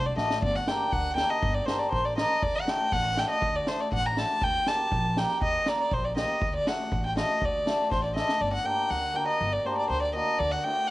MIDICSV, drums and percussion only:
0, 0, Header, 1, 2, 480
1, 0, Start_track
1, 0, Tempo, 499168
1, 402, Time_signature, 2, 2, 24, 8
1, 10485, End_track
2, 0, Start_track
2, 0, Title_t, "Drums"
2, 170, Note_on_c, 9, 38, 45
2, 266, Note_off_c, 9, 38, 0
2, 292, Note_on_c, 9, 38, 77
2, 388, Note_off_c, 9, 38, 0
2, 408, Note_on_c, 9, 36, 75
2, 504, Note_off_c, 9, 36, 0
2, 647, Note_on_c, 9, 38, 78
2, 744, Note_off_c, 9, 38, 0
2, 888, Note_on_c, 9, 36, 61
2, 984, Note_off_c, 9, 36, 0
2, 1129, Note_on_c, 9, 38, 72
2, 1225, Note_off_c, 9, 38, 0
2, 1370, Note_on_c, 9, 36, 73
2, 1466, Note_off_c, 9, 36, 0
2, 1612, Note_on_c, 9, 38, 84
2, 1708, Note_off_c, 9, 38, 0
2, 1850, Note_on_c, 9, 36, 60
2, 1946, Note_off_c, 9, 36, 0
2, 2093, Note_on_c, 9, 38, 87
2, 2189, Note_off_c, 9, 38, 0
2, 2332, Note_on_c, 9, 36, 74
2, 2428, Note_off_c, 9, 36, 0
2, 2574, Note_on_c, 9, 38, 82
2, 2670, Note_off_c, 9, 38, 0
2, 2809, Note_on_c, 9, 36, 57
2, 2905, Note_off_c, 9, 36, 0
2, 3050, Note_on_c, 9, 38, 77
2, 3146, Note_off_c, 9, 38, 0
2, 3288, Note_on_c, 9, 36, 72
2, 3384, Note_off_c, 9, 36, 0
2, 3526, Note_on_c, 9, 38, 81
2, 3622, Note_off_c, 9, 38, 0
2, 3768, Note_on_c, 9, 36, 61
2, 3864, Note_off_c, 9, 36, 0
2, 4009, Note_on_c, 9, 38, 69
2, 4105, Note_off_c, 9, 38, 0
2, 4247, Note_on_c, 9, 36, 76
2, 4343, Note_off_c, 9, 36, 0
2, 4485, Note_on_c, 9, 38, 71
2, 4581, Note_off_c, 9, 38, 0
2, 4727, Note_on_c, 9, 36, 65
2, 4823, Note_off_c, 9, 36, 0
2, 4971, Note_on_c, 9, 38, 78
2, 5067, Note_off_c, 9, 38, 0
2, 5088, Note_on_c, 9, 38, 28
2, 5184, Note_off_c, 9, 38, 0
2, 5207, Note_on_c, 9, 36, 67
2, 5303, Note_off_c, 9, 36, 0
2, 5444, Note_on_c, 9, 38, 74
2, 5540, Note_off_c, 9, 38, 0
2, 5688, Note_on_c, 9, 36, 68
2, 5784, Note_off_c, 9, 36, 0
2, 5930, Note_on_c, 9, 38, 80
2, 6026, Note_off_c, 9, 38, 0
2, 6170, Note_on_c, 9, 36, 86
2, 6266, Note_off_c, 9, 36, 0
2, 6414, Note_on_c, 9, 38, 85
2, 6510, Note_off_c, 9, 38, 0
2, 6652, Note_on_c, 9, 36, 65
2, 6748, Note_off_c, 9, 36, 0
2, 6893, Note_on_c, 9, 38, 84
2, 6989, Note_off_c, 9, 38, 0
2, 7131, Note_on_c, 9, 36, 78
2, 7227, Note_off_c, 9, 36, 0
2, 7374, Note_on_c, 9, 38, 88
2, 7471, Note_off_c, 9, 38, 0
2, 7609, Note_on_c, 9, 38, 44
2, 7611, Note_on_c, 9, 36, 65
2, 7705, Note_off_c, 9, 38, 0
2, 7707, Note_off_c, 9, 36, 0
2, 7851, Note_on_c, 9, 38, 62
2, 7947, Note_off_c, 9, 38, 0
2, 7970, Note_on_c, 9, 38, 66
2, 8066, Note_off_c, 9, 38, 0
2, 10485, End_track
0, 0, End_of_file